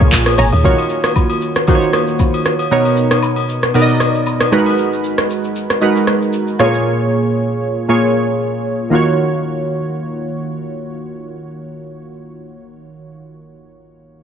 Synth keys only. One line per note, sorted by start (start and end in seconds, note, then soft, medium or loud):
0.00 0.66 A#2 medium
0.00 0.64 A#3 medium
0.00 0.65 F4 medium
0.00 0.66 G#4 medium
0.00 0.65 C#5 loud
0.64 1.47 D#3 medium
0.64 1.48 A#3 medium
0.64 1.48 F4 medium
0.64 1.48 F#4 medium
0.64 1.48 C#5 medium
1.68 2.51 D#3 medium
1.68 2.51 A#3 medium
1.68 2.51 F4 medium
1.68 2.51 F#4 medium
1.68 1.75 C5 medium
1.75 2.55 C#5 medium
2.71 3.54 B2 medium
2.71 3.55 B3 medium
2.71 3.55 D#4 medium
2.71 3.55 A#4 medium
2.71 3.55 C#5 medium
3.74 4.52 B2 medium
3.74 4.52 B3 medium
3.74 4.51 D#4 medium
3.74 4.52 A#4 medium
3.74 3.82 D5 medium
3.82 4.56 D#5 medium
4.52 5.35 G#3 medium
4.52 5.36 D#4 medium
4.52 5.36 F#4 medium
4.52 5.36 A#4 medium
4.52 5.36 B4 loud
5.81 6.59 G#3 medium
5.81 6.59 D#4 medium
5.81 6.59 F#4 medium
5.81 6.59 A#4 medium
5.81 6.60 B4 medium
6.59 7.42 A#2 medium
6.59 7.43 A#3 medium
6.59 7.43 F4 medium
6.59 7.43 G#4 medium
6.59 7.43 C#5 loud
7.88 8.72 A#2 medium
7.88 8.72 A#3 medium
7.88 8.72 F4 medium
7.88 8.72 G#4 medium
7.88 8.72 C#5 medium
8.90 11.94 D#3 medium
8.90 11.95 A#3 medium
8.90 11.96 F4 medium
8.90 11.98 F#4 medium
8.95 11.99 C#5 medium